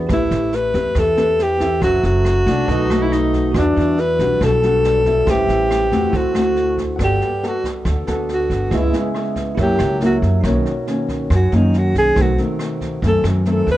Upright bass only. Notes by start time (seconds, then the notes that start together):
0.10 A1
0.31 A1
0.74 E2
0.95 E2
1.82 F#1
2.03 F#1
2.46 C2
2.68 B1
3.54 E2
3.76 E2
4.19 B1
4.41 B1
5.27 A1
5.48 A1
5.92 E2
6.13 D2
6.99 G1
7.85 D2
8.08 D2
8.50 G1
8.72 C#2
9.58 F#2
9.80 C#2
10.22 F#2
10.44 B1
11.30 F#2
11.52 F#2
11.95 B1
12.16 B1
13.02 F#2
13.24 F#2
13.67 D#2